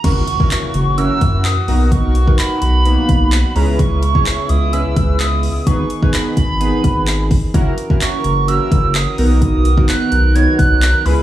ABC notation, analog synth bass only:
X:1
M:4/4
L:1/8
Q:1/4=128
K:B
V:1 name="Analog synth bass" clef=bass
F,,, z2 F,,,2 F,,2 B,,,- | B,,,3 B,,,2 B,,,2 C,,- | C,,3 C,,2 C,,3 | G,,, z2 G,,,2 G,,,3 |
F,,, z2 F,,,2 F,,,2 B,,,- | B,,,3 B,,,2 B,,,2 C,, |]